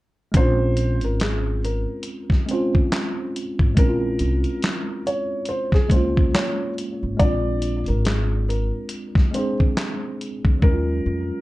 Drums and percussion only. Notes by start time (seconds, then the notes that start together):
0.34 kick, closed hi-hat
0.77 closed hi-hat
1.01 closed hi-hat
1.20 snare, clap, closed hi-hat
1.65 closed hi-hat
2.03 closed hi-hat
2.30 kick, snare
2.49 closed hi-hat
2.75 kick
2.92 snare, clap, closed hi-hat
3.36 closed hi-hat
3.59 kick
3.77 kick, closed hi-hat
4.19 closed hi-hat
4.44 closed hi-hat
4.62 snare, clap, closed hi-hat
5.07 closed hi-hat
5.45 closed hi-hat
5.72 kick, snare
5.90 kick, closed hi-hat
6.17 kick
6.35 snare, clap, closed hi-hat
6.78 closed hi-hat
7.20 kick, closed hi-hat
7.62 closed hi-hat
7.86 closed hi-hat
8.05 snare, clap, closed hi-hat
8.50 closed hi-hat
8.89 closed hi-hat
9.15 kick, snare
9.34 closed hi-hat
9.60 kick
9.77 snare, clap, closed hi-hat
10.21 closed hi-hat
10.45 kick
10.62 kick